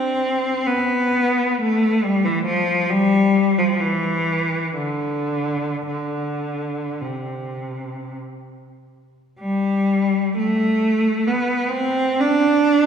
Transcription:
cello
Already playing: C4
0.66 B3
1.61 A3
2.04 G3
2.25 E3
2.45 F3
2.90 G3
3.58 F3
3.80 E3
4.75 D3
5.86 D3
7.01 C3
9.39 G3
10.37 A3
11.27 B3
11.71 C4
12.20 D4

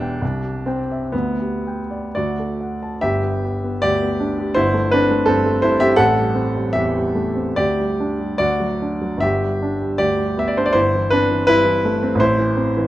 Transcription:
grand piano
Already playing: E1 E2 D4 G4 E5
0.02 G5
0.22 C2
0.44 G4
0.66 C4 G5
0.92 E5
1.12 D2 B3
1.40 G4
1.67 G5
1.91 D5
2.15 D2 F#4 D5
2.39 A4
2.61 F#5
2.83 A5
3.01 G1 G4 E5
3.23 B3
3.44 G4
3.64 B3
3.82 D2 G4 D5
4.02 B3
4.20 D4
4.38 G4
4.54 G1 E4 C5
4.74 A3
4.91 C4 D4 B4
5.11 A3
5.26 G2 C4 A4
5.46 A3
5.62 G2 E4 C5
5.80 C4 G4 E5
5.96 A1 A4 F#5
6.16 G3
6.35 C4
6.56 G3
6.73 E2 G4 E5
6.95 G3
7.15 A3
7.36 C4
7.56 D2 G4 D5
7.79 G3
8.00 D4
8.20 G3
8.38 D2 F#4 D5
8.60 F#3
8.82 D4
9.02 F#3
9.17 G1 E5
9.22 G4
9.43 G3
9.62 D4
9.82 G3
9.98 D2 G4 D5
10.18 G3
10.37 B3 E5
10.48 D5
10.57 D4 C5
10.66 D5
10.73 G1 E4 C5
10.95 E3
11.10 C4 D4 B4
11.31 E3
11.47 G2 E4 B4
11.65 E3
11.85 A3
12.03 C4
12.15 A1
12.20 E4 C5
12.38 E3
12.57 C4
12.77 E3

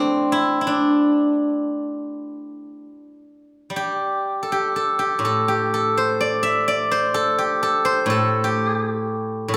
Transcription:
guzheng
Already playing: G3 A3 C4 D4 E4 G4 A4
0.32 E4
0.61 E4
0.67 D4
3.70 G3
3.76 G4
4.43 A4
4.52 G4
4.76 A4
4.99 G4
5.19 A2
5.25 A4
5.48 G4
5.74 A4
5.97 C5
6.21 D5
6.43 E5
6.68 D5
6.91 C5
7.14 A4
7.38 G4
7.63 A4
7.85 C5
8.06 A2
8.10 A4
8.44 G4
9.48 A2
9.54 A4

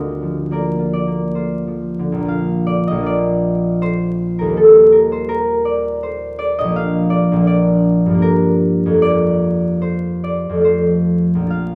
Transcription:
harp
Already playing: D2 D3 F4 A#4 D#5
0.22 F3
0.51 A#3 F4 A#4 D5
0.79 F4
0.93 D5
1.07 A#3
1.35 F4 C5
1.67 F3
1.99 D3
2.12 A#1 F3
2.20 A#3
2.25 F4 F5
2.67 D5
2.87 A#1 D#5
2.95 F3 A#3
3.02 F4 D5
3.82 C5
4.39 D#2 A#4
4.45 G3 A#3
4.53 D#4 A4
4.92 A#4
5.12 C5
5.29 A#4
5.65 D5
6.03 C5
6.39 D5
6.58 A#1 D#5
6.64 F3 A#3
6.72 D4
6.76 F5
7.10 D5
7.32 A#1 F3
7.39 A#3
7.44 D4 D5
8.06 G2 F3
8.14 A#3 D4
8.22 A#4
8.86 F2
8.90 F3 A#3
8.98 F4
9.02 D5
9.82 C5
10.24 D5
10.49 F2 F3
10.57 A3
10.61 F4 C5
11.35 A#1 F3
11.42 A#3
11.47 F4 F5

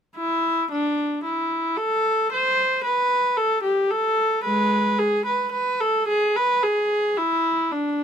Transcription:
viola
0.16 E4
0.71 D4
1.25 E4
1.78 A4
2.32 C5
2.84 B4
3.37 A4
3.63 G4
3.91 A4
4.43 G#3 B4
4.99 G#4
5.26 B4
5.52 B4
5.81 A4
6.08 G#4
6.36 B4
6.63 G#4
7.17 E4
7.72 D4

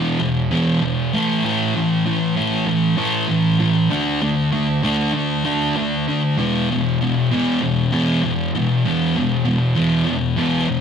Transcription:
distorted electric guitar
Already playing: E2 B2 E3
0.20 E2 B2
0.51 E2 B2 E3
0.82 E2 B2
1.13 A2 E3 A3
1.44 A2 E3 A3
1.75 A2 E3
2.06 A2 E3
2.36 A2 E3 A3
2.66 A2 E3
2.97 A2 E3 A3
3.29 A2 E3
3.60 A2 E3
3.90 D3 A3 D4
4.22 D3 A3
4.52 D3 A3
4.83 D3 A3 D4
5.13 D3 A3
5.44 D3 A3 D4
5.76 D3 A3
6.08 D3 A3
6.38 E2 B2 E3
6.70 E2 B2
7.01 E2 B2
7.32 E2 B2 E3
7.62 E2 B2
7.92 E2 B2 E3
8.22 E2 B2
8.55 E2 B2
8.85 E2 B2 E3
9.16 E2 B2
9.45 E2 B2
9.75 E2 B2 E3
10.05 E2 B2
10.37 E2 B2 E3
10.68 E2 B2

